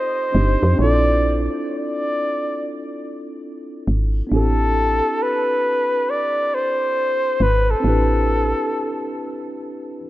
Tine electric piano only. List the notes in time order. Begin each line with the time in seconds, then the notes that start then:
Already playing: C4 D#4 F4 G4 A4
0.32 C4 D4 D#4 G4
0.37 C5
0.74 C4 D4
0.79 E4 F4
0.84 A4
4.27 B3 D4
4.31 C4 E4 G4
4.36 A4
7.80 C4 D4
7.85 E4 G4
7.89 B4